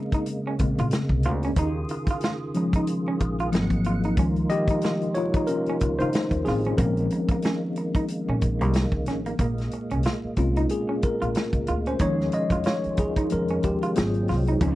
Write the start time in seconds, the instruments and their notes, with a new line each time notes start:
Already playing: tine electric piano C#3 G#3 C4, tonewheel organ C#3 G#3 A#3
0.12 clean electric guitar D#4, kick, closed hi-hat
0.26 closed hi-hat
0.47 clean electric guitar C#4
0.59 upright bass A#1, tine electric piano C#3 G#3 C4, muted clean electric guitar stroke, kick, closed hi-hat
0.78 upright bass A#2, clean electric guitar F4, closed hi-hat
0.91 muted clean electric guitar stroke, snare, closed hi-hat
1.09 upright bass C2, kick
1.23 upright bass D2, clean electric guitar F4, closed hi-hat
1.43 clean electric guitar C#4, closed hi-hat
1.56 upright bass D#2, tonewheel organ D#3 F4 G#4, clean electric guitar D#4, kick, closed hi-hat
1.89 muted clean electric guitar stroke, closed hi-hat
2.07 clean electric guitar F4, kick, closed hi-hat
2.21 clean electric guitar F4, snare, closed hi-hat
2.54 tine electric piano F3 G#3 C#4, muted clean electric guitar stroke, closed hi-hat
2.73 clean electric guitar D#4, kick, closed hi-hat
2.87 closed hi-hat
3.08 clean electric guitar C#4
3.20 upright bass A#1, muted clean electric guitar stroke, kick, closed hi-hat
3.39 clean electric guitar F4, closed hi-hat
3.52 upright bass G#1, tine electric piano F3 F#3 A#3 C4, tonewheel organ G#3 A#3 F#5, muted clean electric guitar stroke, snare, closed hi-hat
3.70 kick, closed hi-hat
3.84 clean electric guitar F4, closed hi-hat
4.03 clean electric guitar D#4, closed hi-hat
4.17 upright bass C#2, tine electric piano D#3 F3 G#3, tonewheel organ D#3 D#4 F4, clean electric guitar C#4, kick, closed hi-hat
4.36 closed hi-hat
4.50 tine electric piano G4 D#5, muted clean electric guitar stroke, closed hi-hat
4.68 clean electric guitar D#4, kick, closed hi-hat
4.82 clean electric guitar F4, snare, closed hi-hat
5.01 closed hi-hat
5.14 tine electric piano F4 C#5, muted clean electric guitar stroke, closed hi-hat
5.34 clean electric guitar D#4, kick, closed hi-hat
5.47 tine electric piano C#4 A#4, closed hi-hat
5.66 clean electric guitar C#4, closed hi-hat
5.81 upright bass C#2, muted clean electric guitar stroke, kick, closed hi-hat
5.99 upright bass C#3, tine electric piano D#4 C5, clean electric guitar F4, closed hi-hat
6.13 muted clean electric guitar stroke, snare, closed hi-hat
6.31 upright bass D#2, kick, closed hi-hat
6.45 upright bass A1, tine electric piano C4 G#4, clean electric guitar F4, snare, open hi-hat
6.65 clean electric guitar C#4, closed hi-hat
6.78 upright bass A#1, tine electric piano F3 G#3 C4 C#4 A#4, tonewheel organ G#3 A#3, clean electric guitar A#3, kick, closed hi-hat
6.97 closed hi-hat
7.10 muted clean electric guitar stroke, closed hi-hat
7.29 clean electric guitar A#3, kick, closed hi-hat
7.42 clean electric guitar C#4, snare, closed hi-hat
7.76 muted clean electric guitar stroke, closed hi-hat
7.95 clean electric guitar D#4, kick, closed hi-hat
8.08 closed hi-hat
8.28 upright bass A#2, clean electric guitar C#4
8.41 upright bass A#1, muted clean electric guitar stroke, kick, closed hi-hat
8.61 upright bass C2, clean electric guitar A#3, closed hi-hat
8.74 muted clean electric guitar stroke, snare, closed hi-hat
8.92 upright bass C#2, kick
9.06 upright bass A1, clean electric guitar C#4, snare, closed hi-hat
9.26 clean electric guitar A#3, closed hi-hat
9.39 upright bass A#1, tonewheel organ A#2 G#3 A#3, clean electric guitar A#3, kick, closed hi-hat
9.58 snare, closed hi-hat
9.71 muted clean electric guitar stroke, closed hi-hat
9.91 upright bass C2, clean electric guitar C#4, closed hi-hat
10.03 clean electric guitar F4, snare, closed hi-hat
10.24 muted upright bass stroke
10.36 upright bass C2, tine electric piano G#3 C4 C#4 F4, muted clean electric guitar stroke, kick, closed hi-hat
10.56 clean electric guitar D#4, closed hi-hat
10.69 tine electric piano G#4, closed hi-hat
10.89 clean electric guitar C#4
11.02 tine electric piano A#4, muted clean electric guitar stroke, muted upright bass stroke, kick, closed hi-hat
11.22 upright bass A#1, clean electric guitar F4, closed hi-hat
11.35 muted clean electric guitar stroke, snare, closed hi-hat
11.53 upright bass C#2, kick, closed hi-hat
11.67 upright bass D2, clean electric guitar F4, closed hi-hat
11.86 clean electric guitar C#4, tine electric piano C5, closed hi-hat
11.99 upright bass D#2, tonewheel organ D#3 G#3 C#4 F4, tine electric piano F3 G#3 C#4 C#5, clean electric guitar D#4, kick, closed hi-hat
12.20 snare
12.32 tine electric piano D#5, muted clean electric guitar stroke, closed hi-hat
12.50 upright bass F2, clean electric guitar F4, kick, closed hi-hat
12.64 clean electric guitar F4, tine electric piano C#5, snare, closed hi-hat
12.84 muted upright bass stroke, closed hi-hat
12.97 upright bass D#2, tine electric piano G#4, muted clean electric guitar stroke, kick, closed hi-hat
13.16 clean electric guitar D#4, kick, closed hi-hat
13.30 upright bass F2, tine electric piano F3 G#3 C#4 A#4, closed hi-hat
13.48 clean electric guitar C#4, closed hi-hat
13.63 upright bass D#2, tine electric piano G4, muted clean electric guitar stroke, kick, closed hi-hat
13.83 clean electric guitar F4, closed hi-hat
13.95 upright bass G#1, tine electric piano F#3 A#3 C4 F4 G#4, tonewheel organ F#3 G#3 C4, muted clean electric guitar stroke, snare, closed hi-hat
14.14 closed hi-hat
14.28 upright bass C2, clean electric guitar F4, snare, open hi-hat
14.47 clean electric guitar D#4, closed hi-hat
14.61 upright bass C#2, tonewheel organ C#3 D#4 F4, tine electric piano F3 C4 D#4, clean electric guitar C#4, kick, closed hi-hat